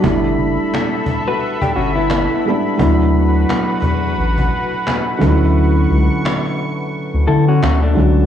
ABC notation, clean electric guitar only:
X:1
M:4/4
L:1/16
Q:"Swing 16ths" 1/4=87
K:D
V:1 name="Clean electric guitar"
z6 z [FB]2 [DG] [CF] [B,E]4- [B,E] | z16 | z8 z2 [EA] [CF]2 [A,D]3 |]